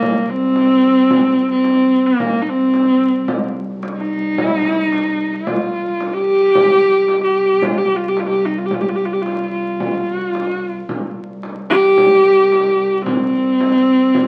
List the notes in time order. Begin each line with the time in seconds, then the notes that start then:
Already playing: C2 A#3
0.02 frame drum
0.30 C4
0.43 frame drum
0.56 frame drum
0.83 frame drum
1.10 frame drum
1.51 C4, frame drum
1.64 frame drum
2.07 A#3
2.20 C2, frame drum
2.42 D#4
2.49 C4
2.61 frame drum
2.74 frame drum
3.28 frame drum
3.70 frame drum
3.83 frame drum
3.97 D#4
4.38 frame drum
4.44 E4
4.56 D#4
4.65 frame drum
4.70 E4
4.79 D#4, frame drum
4.92 frame drum
5.20 frame drum
5.34 F4
5.47 frame drum
5.87 frame drum
6.00 frame drum
6.14 G4
6.55 C2, frame drum
6.96 frame drum
7.08 frame drum
7.24 G4
7.35 frame drum
7.62 F4, frame drum
7.78 G4
7.96 F4
8.04 frame drum
8.09 G4
8.17 F4, frame drum
8.30 G4
8.46 D#4
8.58 F4
8.66 G4
8.71 F4, frame drum
8.81 G4
8.89 F4
8.96 G4
9.05 F4
9.12 G4, frame drum
9.22 F4
9.26 frame drum
9.52 F4, frame drum
9.80 frame drum
10.13 F#4
10.21 frame drum
10.30 F4
10.35 frame drum
10.48 F#4
10.65 F4
10.89 C2, frame drum
11.30 frame drum
11.43 frame drum
11.70 G4, frame drum
11.97 frame drum
12.38 frame drum
12.52 frame drum
13.06 C4, frame drum
13.47 frame drum
13.61 frame drum
13.88 frame drum
14.14 frame drum